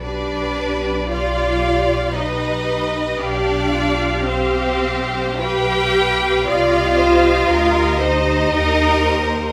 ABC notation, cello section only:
X:1
M:3/4
L:1/8
Q:1/4=57
K:Gphr
V:1 name="Cello section"
D2 F2 E2 | D2 C2 G2 | F3 E3 |]